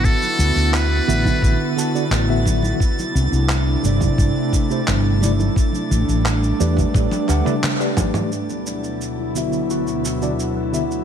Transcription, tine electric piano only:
X:1
M:4/4
L:1/16
Q:1/4=87
K:Dmix
V:1 name="Tine electric piano"
z6 [D,B,Fe]4 [D,B,Fa] [D,B,Fd] z [D,B,Fe]3 | z6 [C,A,Ed]4- [C,A,Ed] [C,A,Ec] z2 [C,A,Ed] z | z6 [A,GBd]4 [A,GBf] [A,GBd] z [A,GBd]3 | z6 [D,B,Fe]4- [D,B,Fe] [D,B,Fd] z2 [D,B,Fe] z |]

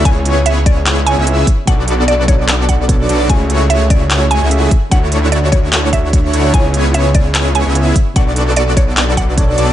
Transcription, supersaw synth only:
X:1
M:4/4
L:1/16
Q:"Swing 16ths" 1/4=148
K:Bdor
V:1 name="Supersaw synth"
[B,CEGc]8- [B,CEGc]3 [B,CEGe]3 z2 | [B,DFAd]12- [B,DFAd]2 [B,DFAd]2 | [A,EFGc]8- [A,EFGc]3 [A,EFGe]3 z2 | [A,DEFc]12- [A,DEFc]2 [A,DEFc]2 |
[B,CEGc]8- [B,CEGc]3 [B,CEGe]3 z2 | [B,DFAd]12- [B,DFAd]2 [B,DFAd]2 |]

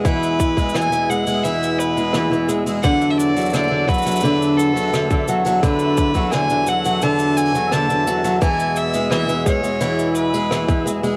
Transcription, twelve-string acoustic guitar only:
X:1
M:4/4
L:1/16
Q:1/4=86
K:Emix
V:1 name="Twelve-string acoustic guitar" clef=bass
E,3 G, E, E, G, G, E,3 G, E, E, G, G, | D,3 F, D, D, F, F, D,3 F, D, D, F, F, | D,3 F, D, D, F, F, D,3 F, D, D, F, F, | E,3 G, E, E, G, G, E,3 G, E, E, G, G, |]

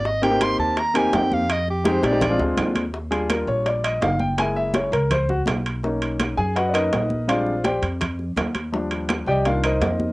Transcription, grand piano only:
X:1
M:4/4
L:1/16
Q:1/4=166
K:Eb
V:1 name="Grand piano"
z2 [B,CEG] [B,CEG]4- [B,CEG] z2 [B,CEG]6 | z4 [A,CEG] z [A,CEG] [A,CEG] z [A,CDF]6 z | z2 A2 B2 _d2 =d2 e2 f2 g2 | a2 _f2 _d2 B2 c2 _G2 z4 |
z6 [Aa]2 [^F=B^d^f]2 [^AB=d^d]6 | [Fcdf]4 [Gcdg]2 z8 z2 | z6 [Gdeg]2 [Ff]2 [EBce]6 |]
V:2 name="Grand piano"
z16 | z16 | z2 [G,DF]12- [G,DF]2 | [A,B,_F]6 z8 z2 |
[^A,_D^D]6 z4 [A,_D^D]2 z4 | [G,A,CD]2 z12 z2 | [F,G,D]8 [E,B,D]2 z6 |]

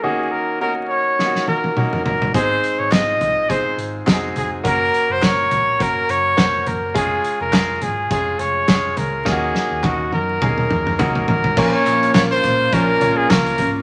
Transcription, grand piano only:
X:1
M:4/4
L:1/8
Q:"Swing 16ths" 1/4=104
K:Bbm
V:1 name="Grand piano"
[B,DEG]2 [B,DEG]2 [B,DEFG]2 [B,DEG]2 | [A,CEA]2 [A,CEF]2 [A,CEA]2 [A,CEGA]2 | [B,DGB]2 [B,DGB]2 [B,DGB]2 [B,DGc]2 | [A,DFA]2 [A,DFA]2 [A,DFA]2 [A,DFA]2 |
[B,DEFG]2 [B,DEG]2 [B,DEA]2 [B,DEG]2 | [B,DFBd]2 [B,DFBf]2 [B,DFBd] [B,DFBd] [B,DFBd]2 |]
V:2 name="Grand piano" clef=bass
E,3 z4 z | A,,3 z4 z | z8 | z8 |
E,3 z4 z | B,,3 z4 z |]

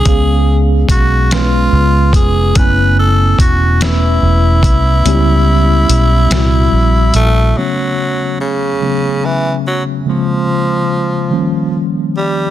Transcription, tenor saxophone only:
X:1
M:6/8
L:1/8
Q:3/8=48
K:C#phr
V:1 name="Tenor saxophone"
G z F ^E2 G | B A F E3- | E4- E A, | F,2 C,2 E, F, |
^E,4 z =G, |]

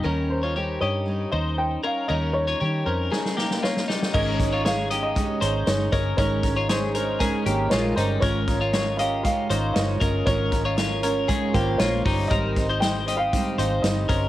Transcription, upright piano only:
X:1
M:4/4
L:1/16
Q:1/4=118
K:Ebmix
V:1 name="Upright piano"
B2 c4 d4 e2 g2 f2 | e2 d4 c2 B4 d4 | e4 f3 e4- e d2 d2 | d4 c4 B4 d2 c2 |
d6 f2 f4 e4 | d8 z4 d4 | e4 g3 f4- f e4 |]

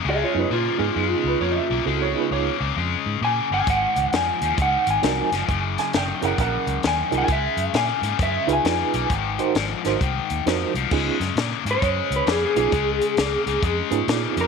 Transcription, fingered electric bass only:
X:1
M:4/4
L:1/8
Q:"Swing" 1/4=133
K:Dbmix
V:1 name="Fingered electric bass" clef=bass
D,, G,, B,, A,, G,, D,, F,, C,, | D,,2 D,, D,, F,, A,, B,, =G,,, | A,,, D,, F,, E,, D,, A,,, =C,, G,,, | G,,,2 G,,, G,,, B,,, D,, E,, =C,, |
D,, G,, B,, A,, G,, D,, F,, C,, | A,,,2 A,,, A,,, =C,, E,, F,, C,, | D,, G,, B,, A,, G,, D,, F,, C,, | D,,2 D,, D,, F,, A,, B,, F,, |]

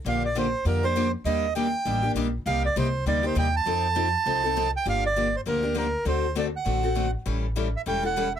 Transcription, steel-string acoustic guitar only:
X:1
M:4/4
L:1/8
Q:"Swing" 1/4=200
K:Fmix
V:1 name="Steel-string acoustic guitar"
[D,F,B,DG] z [D,F,B,DG] z [D,F,B,DG] [B,DG] [D,F,B,DG] z | [E,G,B,DG] z [E,G,B,DG] z [E,G,B,DG] [B,DG] [E,G,B,DG] z | [C,G,B,EG] z [C,G,B,EG] z [C,G,B,EG] [B,EG] [C,G,B,EG] z | [F,CEA] z [F,CEA] z [F,CEA] [CEA] [F,CEA] z |
[K:Dphr] [D,F,B,DG] z [D,F,B,DG] z [D,F,B,DG] [B,DG] [D,F,B,DG] z | [D,A,C^FA] z [D,A,CFA] z [D,A,CFA] [CFA] [D,A,CFA] z | [=E,G,^C=EA] z [E,G,CEA] z [E,G,CEA] [CEA] [E,G,CEA] z |]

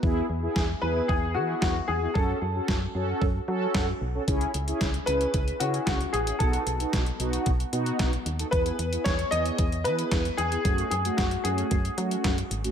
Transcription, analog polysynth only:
X:1
M:4/4
L:1/16
Q:1/4=113
K:E
V:1 name="Analog polysynth"
[B,EG]2 z [B,EG]2 z [B,EG]2 z2 [B,EG]3 z2 [B,EG] | [CFA]2 z [CFA]2 z [CFA]2 z2 [CFA]3 z2 [CFA] | [CEG]2 z [CEG]2 z [CEG]2 z2 [CEG]3 z2 [CEG] | [B,DF]2 z [B,DF]2 z [B,DF]2 z2 [B,DF]3 z2 [B,DA] |
[B,EG]2 z [B,EG]2 z [B,EG]2 z2 [B,EG]3 z2 [B,EG] | [A,CF]2 z [A,CF]2 z [A,CF]2 z2 [A,CF]3 z2 [A,CF] |]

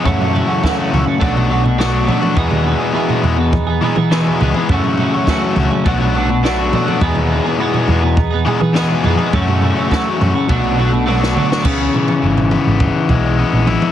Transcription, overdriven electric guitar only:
X:1
M:4/4
L:1/16
Q:1/4=103
K:E
V:1 name="Overdriven electric guitar"
[F,,C,F,A,CF]3 [F,A,CF] [F,,C,F,A,CF]2 [F,A,CF]2 [B,,F,B,=DF]2 [F,B,DF]2 [B,,F,B,DF] [B,DF] [F,B,DF] [B,DF] | [E,,B,,E,G,B,G]3 [E,G,B,G] [E,,B,,E,G,B,G]2 [E,G,B,G]3 z [E,G,B,G]2 [E,,B,,E,G,B,G] [E,G,B,G] [E,G,B,G] [E,G,B,G] | [F,,C,F,A,CF]3 [F,A,CF] [F,,C,F,A,CF]2 [F,A,CF]2 [B,,F,B,=DF]2 [F,B,DF]2 [B,,F,B,DF] [B,DF] [F,B,DF] [B,DF] | [E,,B,,E,G,B,G]3 [E,G,B,G] [E,,B,,E,G,B,G]2 [E,G,B,G]3 z [E,G,B,G]2 [E,,B,,E,G,B,G] [E,G,B,G] [E,G,B,G] [E,G,B,G] |
[F,,C,F,A,CF]3 [F,A,CF] [F,,C,F,A,CF]2 [F,A,CF]2 [B,,F,B,=DF]2 [F,B,DF]2 [B,,F,B,DF] [B,DF] [F,B,DF] [B,DF] | C,2 E,2 E,2 B,2 E,2 G,2 B,2 E2 |]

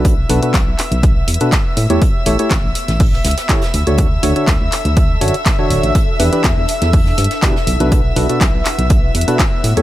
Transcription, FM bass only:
X:1
M:4/4
L:1/16
Q:1/4=122
K:Bm
V:1 name="FM bass" clef=bass
B,,,2 B,,, z B,,, B,,, z B,,,3 E,, z3 A,, E,, | z2 A,,, z A,,, A,,, z A,,,3 C,, z3 D,, D,,- | D,,2 D,, z D,, D,, z D,,3 F,, z3 D,,, A,,, | z2 E,, z E,, E,, z E,,3 G,, z3 B,,, B,,,- |
B,,,2 B,,, z B,,, B,,, z B,,,3 E,, z3 A,, E,, |]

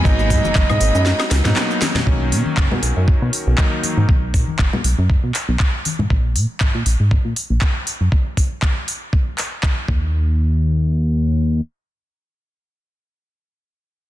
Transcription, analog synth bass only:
X:1
M:4/4
L:1/16
Q:"Swing 16ths" 1/4=119
K:Cblyd
V:1 name="Analog synth bass" clef=bass
A,,,2 A,, G,,, G,,, A,, A,,, G,,2 z D,, A,, z4 | =B,,,2 =B,, z ^F,,, B,, B,,, ^F,,2 B,, z B,,, z3 A,, | =B,,,2 =B,, ^F,,, F,,, B,, B,,, ^F,,2 B,, z B,,, z3 A,, | B,,,2 B,, z A,,, B,, B,,, A,,2 B,, z B,,, z3 G,, |
z12 z2 E,,2- | E,,12 z4 | z16 |]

